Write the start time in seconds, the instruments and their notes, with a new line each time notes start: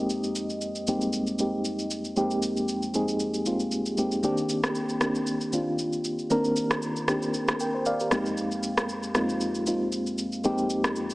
Already playing: fm electric piano F2 G#3 A#3 C4 D#4 G4 D#5
0.10 shaker
0.24 shaker
0.35 shaker
0.50 shaker
0.61 shaker
0.75 shaker
0.87 fm electric piano F2 G3 A#3 C4 D#4 G4, shaker
0.94 fm electric piano G#3
1.01 shaker
1.13 shaker
1.27 shaker
1.39 fm electric piano F2 G#3 A#3 C4 D#4 G4, shaker
1.65 shaker
1.79 shaker
1.91 shaker
2.05 shaker
2.16 fm electric piano F2 G#3 A#3 C4 D#4 G4, shaker
2.31 shaker
2.42 shaker
2.57 shaker
2.68 shaker
2.82 shaker
2.94 fm electric piano F2 G#3 A#3 C4 D#4 G#4, shaker
3.08 shaker
3.20 shaker
3.34 shaker
3.46 fm electric piano F2 G#3 A#3 C4 D#4 F4, shaker
3.60 shaker
3.71 shaker
3.86 shaker
3.97 fm electric piano F2 G#3 A#3 C4 D#4 G4, shaker
4.12 shaker
4.23 fm electric piano D#3 A#3 C4 D4 G4, shaker
4.37 shaker
4.49 shaker
4.64 cross-stick, shaker
4.75 shaker
4.89 shaker
5.00 fm electric piano D#3 A#3 C4 D4 G4, cross-stick, shaker
5.15 shaker
5.27 shaker
5.41 shaker
5.52 fm electric piano D#3 A#3 C4 D4 F4, shaker
5.79 shaker
5.93 shaker
6.04 shaker
6.19 shaker
6.30 fm electric piano D#3 A#3 C4 D4 A#4, shaker
6.44 shaker
6.56 shaker
6.71 cross-stick, shaker
6.82 shaker
6.96 shaker
7.08 fm electric piano D#3 A#3 C4 D4 G4, cross-stick, shaker
7.22 shaker
7.34 shaker
7.48 cross-stick, shaker
7.60 fm electric piano G5, shaker
7.74 fm electric piano C5
7.86 fm electric piano A#4 D5 F5, shaker
8.00 fm electric piano G4 A#4, shaker
8.11 fm electric piano F2 G#3 A#3 C4 D#4 G4, cross-stick, shaker
8.26 shaker
8.37 shaker
8.51 shaker
8.63 shaker
8.77 cross-stick, shaker
8.89 shaker
9.03 shaker
9.15 fm electric piano F2 G#3 A#3 C4 D#4 F4, cross-stick, shaker
9.29 shaker
9.41 shaker
9.55 shaker
9.66 fm electric piano F2 G#3 A#3 C4 D#4 F4, shaker
9.92 shaker
10.07 shaker
10.18 shaker
10.32 shaker
10.44 fm electric piano F2 G#3 A#3 C4 D#4 G4, shaker
10.58 shaker
10.70 shaker
10.84 cross-stick, shaker
10.96 shaker
11.10 shaker